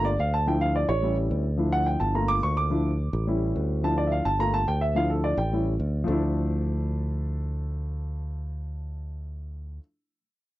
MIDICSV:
0, 0, Header, 1, 3, 480
1, 0, Start_track
1, 0, Key_signature, -1, "minor"
1, 0, Tempo, 280374
1, 805, Time_signature, 4, 2, 24, 8
1, 18137, End_track
2, 0, Start_track
2, 0, Title_t, "Grand piano"
2, 0, Program_c, 0, 0
2, 0, Note_on_c, 0, 65, 52
2, 81, Note_on_c, 0, 74, 72
2, 176, Note_off_c, 0, 65, 0
2, 316, Note_off_c, 0, 74, 0
2, 338, Note_on_c, 0, 77, 85
2, 565, Note_off_c, 0, 77, 0
2, 576, Note_on_c, 0, 81, 83
2, 803, Note_on_c, 0, 53, 46
2, 804, Note_off_c, 0, 81, 0
2, 807, Note_on_c, 0, 62, 46
2, 820, Note_on_c, 0, 79, 69
2, 824, Note_on_c, 0, 64, 54
2, 1045, Note_off_c, 0, 79, 0
2, 1046, Note_on_c, 0, 77, 86
2, 1278, Note_off_c, 0, 77, 0
2, 1294, Note_on_c, 0, 74, 69
2, 1487, Note_off_c, 0, 53, 0
2, 1490, Note_off_c, 0, 62, 0
2, 1498, Note_off_c, 0, 64, 0
2, 1517, Note_on_c, 0, 73, 79
2, 1522, Note_off_c, 0, 74, 0
2, 1747, Note_on_c, 0, 55, 46
2, 1763, Note_on_c, 0, 61, 42
2, 1775, Note_on_c, 0, 64, 51
2, 1967, Note_off_c, 0, 73, 0
2, 2439, Note_off_c, 0, 55, 0
2, 2447, Note_off_c, 0, 61, 0
2, 2453, Note_off_c, 0, 64, 0
2, 2695, Note_on_c, 0, 53, 46
2, 2704, Note_on_c, 0, 62, 46
2, 2716, Note_on_c, 0, 64, 49
2, 2953, Note_on_c, 0, 78, 88
2, 3190, Note_off_c, 0, 78, 0
2, 3192, Note_on_c, 0, 79, 67
2, 3422, Note_on_c, 0, 81, 74
2, 3430, Note_off_c, 0, 79, 0
2, 3620, Note_off_c, 0, 53, 0
2, 3625, Note_off_c, 0, 62, 0
2, 3631, Note_off_c, 0, 64, 0
2, 3665, Note_off_c, 0, 81, 0
2, 3665, Note_on_c, 0, 57, 47
2, 3674, Note_on_c, 0, 58, 46
2, 3683, Note_on_c, 0, 82, 64
2, 3696, Note_on_c, 0, 65, 51
2, 3909, Note_on_c, 0, 86, 102
2, 3915, Note_off_c, 0, 82, 0
2, 4149, Note_off_c, 0, 86, 0
2, 4163, Note_on_c, 0, 85, 78
2, 4395, Note_off_c, 0, 85, 0
2, 4400, Note_on_c, 0, 86, 85
2, 4585, Note_off_c, 0, 57, 0
2, 4590, Note_off_c, 0, 58, 0
2, 4601, Note_off_c, 0, 65, 0
2, 4621, Note_on_c, 0, 53, 46
2, 4636, Note_on_c, 0, 62, 46
2, 4640, Note_on_c, 0, 64, 57
2, 4950, Note_off_c, 0, 53, 0
2, 4958, Note_off_c, 0, 62, 0
2, 4960, Note_off_c, 0, 64, 0
2, 5533, Note_off_c, 0, 86, 0
2, 5597, Note_on_c, 0, 55, 45
2, 5603, Note_on_c, 0, 61, 44
2, 5620, Note_on_c, 0, 64, 53
2, 6511, Note_off_c, 0, 55, 0
2, 6515, Note_off_c, 0, 61, 0
2, 6524, Note_off_c, 0, 64, 0
2, 6562, Note_on_c, 0, 53, 48
2, 6569, Note_on_c, 0, 62, 47
2, 6577, Note_on_c, 0, 81, 80
2, 6583, Note_on_c, 0, 64, 49
2, 6803, Note_off_c, 0, 81, 0
2, 6809, Note_on_c, 0, 74, 69
2, 6970, Note_on_c, 0, 76, 51
2, 7008, Note_off_c, 0, 76, 0
2, 7039, Note_off_c, 0, 74, 0
2, 7049, Note_on_c, 0, 77, 69
2, 7246, Note_off_c, 0, 53, 0
2, 7250, Note_off_c, 0, 62, 0
2, 7257, Note_off_c, 0, 64, 0
2, 7279, Note_off_c, 0, 77, 0
2, 7281, Note_on_c, 0, 81, 86
2, 7513, Note_on_c, 0, 57, 48
2, 7514, Note_off_c, 0, 81, 0
2, 7524, Note_on_c, 0, 58, 44
2, 7533, Note_on_c, 0, 82, 86
2, 7534, Note_on_c, 0, 65, 53
2, 7761, Note_off_c, 0, 82, 0
2, 7768, Note_on_c, 0, 81, 90
2, 7837, Note_off_c, 0, 57, 0
2, 7842, Note_off_c, 0, 58, 0
2, 7847, Note_off_c, 0, 65, 0
2, 7998, Note_off_c, 0, 81, 0
2, 8012, Note_on_c, 0, 79, 75
2, 8239, Note_on_c, 0, 76, 79
2, 8240, Note_off_c, 0, 79, 0
2, 8473, Note_off_c, 0, 76, 0
2, 8476, Note_on_c, 0, 53, 52
2, 8486, Note_on_c, 0, 62, 44
2, 8494, Note_on_c, 0, 77, 81
2, 8496, Note_on_c, 0, 64, 54
2, 8721, Note_off_c, 0, 77, 0
2, 8727, Note_on_c, 0, 69, 63
2, 8958, Note_off_c, 0, 69, 0
2, 8969, Note_on_c, 0, 74, 70
2, 9164, Note_off_c, 0, 53, 0
2, 9169, Note_off_c, 0, 62, 0
2, 9174, Note_off_c, 0, 64, 0
2, 9199, Note_off_c, 0, 74, 0
2, 9211, Note_on_c, 0, 79, 70
2, 9460, Note_on_c, 0, 55, 42
2, 9466, Note_on_c, 0, 61, 43
2, 9481, Note_on_c, 0, 64, 50
2, 9654, Note_off_c, 0, 79, 0
2, 9771, Note_off_c, 0, 55, 0
2, 9774, Note_off_c, 0, 61, 0
2, 9783, Note_off_c, 0, 64, 0
2, 10340, Note_on_c, 0, 53, 67
2, 10384, Note_on_c, 0, 57, 63
2, 10431, Note_on_c, 0, 62, 63
2, 10472, Note_on_c, 0, 64, 71
2, 16713, Note_off_c, 0, 53, 0
2, 16735, Note_off_c, 0, 57, 0
2, 16759, Note_off_c, 0, 62, 0
2, 16779, Note_off_c, 0, 64, 0
2, 18137, End_track
3, 0, Start_track
3, 0, Title_t, "Fingered electric bass"
3, 0, Program_c, 1, 33
3, 0, Note_on_c, 1, 31, 93
3, 278, Note_off_c, 1, 31, 0
3, 328, Note_on_c, 1, 38, 75
3, 1433, Note_off_c, 1, 38, 0
3, 1518, Note_on_c, 1, 33, 91
3, 2190, Note_off_c, 1, 33, 0
3, 2239, Note_on_c, 1, 38, 78
3, 3348, Note_off_c, 1, 38, 0
3, 3437, Note_on_c, 1, 31, 79
3, 4109, Note_off_c, 1, 31, 0
3, 4163, Note_on_c, 1, 38, 77
3, 5270, Note_off_c, 1, 38, 0
3, 5361, Note_on_c, 1, 33, 88
3, 6031, Note_off_c, 1, 33, 0
3, 6089, Note_on_c, 1, 38, 73
3, 7193, Note_off_c, 1, 38, 0
3, 7283, Note_on_c, 1, 31, 78
3, 7953, Note_off_c, 1, 31, 0
3, 8007, Note_on_c, 1, 38, 73
3, 9113, Note_off_c, 1, 38, 0
3, 9200, Note_on_c, 1, 33, 80
3, 9871, Note_off_c, 1, 33, 0
3, 9921, Note_on_c, 1, 38, 73
3, 10346, Note_off_c, 1, 38, 0
3, 10404, Note_on_c, 1, 38, 81
3, 16745, Note_off_c, 1, 38, 0
3, 18137, End_track
0, 0, End_of_file